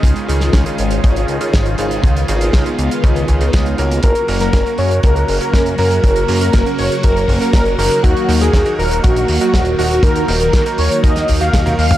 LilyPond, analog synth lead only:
\new Staff \with { instrumentName = "Analog synth lead" } { \time 4/4 \key cis \mixolydian \tempo 4 = 120 r1 | r1 | ais'8. ais'8. cis''8 ais'8. ais'8. ais'8 | ais'8. ais'8. cis''8 ais'8. ais'8. ais'8 |
fis'8. gis'8. ais'8 fis'8. fis'8. fis'8 | ais'8. ais'8. cis''8 dis''8. eis''8. eis''8 | }